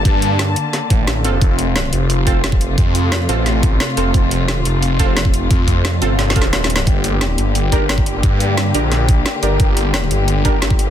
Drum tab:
HH |x-----x-----x-----x-----x-----x-----x-----x-----|x-----x-----x-----x-----x-----x-----x-----x-----|x-----x-----x-----x-----x-----x-----x-----x-----|x-----x-----x-----x-----x-----x-----x-----x-----|
SD |------------o-----------o-----------o-----------|------------o-----------------------o-----------|------------o-----------o-----------o-----------|------------o-----------------------o-----------|
BD |o-----------------------------o-----------------|o-----------------------------o--------o--------|o-----------------------------o-----------------|o-----------------------------o--------o--------|

HH |x-----x-----x-----x-----x-----x-----x-----x-----|x-----x-----x-----x-----x-----x-----x-----x-----|x-----x-----x-----x-----x-----x-----x-----x-----|x-----x-----x-----x-----x-----x-----x-----x-----|
SD |------------o-----------o---o---o---o---o---o---|------------o-----------------------o-----------|------------o-----------o-----------o-----------|------------o-----------------------o-----------|
BD |o-----o-----------------------o-----------------|o-----------------------------o--------o--------|o-----------------------------o-----------------|o-----------------------------o--------o--------|